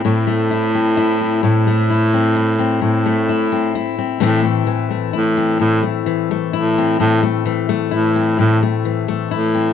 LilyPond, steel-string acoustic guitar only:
\new Staff \with { instrumentName = "Steel-string acoustic guitar" } { \time 3/4 \key a \minor \tempo 4 = 130 << { e'8 a8 e'8 c'8 e'8 c'8 | r8 a8 e'8 c'8 e'8 c'8 | r8 a8 e'8 c'8 e'8 c'8 | <e a c' e'>8 a4 a8 e'8 c'8 |
r8 a4 a8 e'8 c'8 | r8 a4 a8 e'8 c'8 | r8 a4 a8 e'8 c'8 | } \\ { a,2. | a,2. | a,2. | a,4 e2 |
a,4 e2 | a,4 e2 | a,4 e2 | } >> }